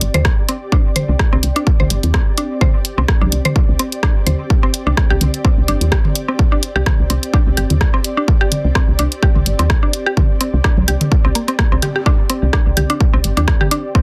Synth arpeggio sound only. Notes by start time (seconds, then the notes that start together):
0.14 C5
0.49 C4
0.72 D4
0.96 C5
1.33 C4
1.56 D4
1.80 C5
2.14 C4
2.38 D4
2.61 C5
2.98 C4
3.21 D4
3.45 C5
3.79 C4
4.03 D4
4.27 C5
4.63 C4
4.87 D4
5.10 G4
5.45 C4
5.68 D4
5.92 G4
6.28 C4
6.52 D4
6.76 G4
7.10 C4
7.34 D4
7.57 G4
7.94 C4
8.17 D4
8.41 G4
8.75 C4
8.99 D4
9.23 G4
9.59 C4
9.83 D4
10.06 G4
10.41 C4
10.64 D4
10.88 G4
11.25 C4
11.35 A#3
11.48 C4
11.59 A#3
11.72 C4
11.83 G4
11.96 G4
12.06 D4
12.30 C4
12.53 D4
12.77 G4
12.90 D4
13.13 C4
13.37 D4
13.61 G4
13.71 D4
13.95 C4